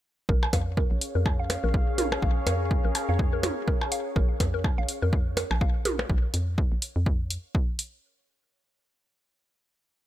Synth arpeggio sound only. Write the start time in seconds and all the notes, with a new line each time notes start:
0.29 A#4
0.53 F5
0.77 A#4
1.15 A#4
1.39 F5
1.64 A#4
1.98 A#4
2.22 F5
2.47 A#4
2.85 A#4
3.09 F5
3.33 A#4
3.68 A#4
3.92 F5
4.16 A#4
4.54 A#4
4.78 F5
5.02 A#4
5.37 A#4
5.61 F5
5.85 A#4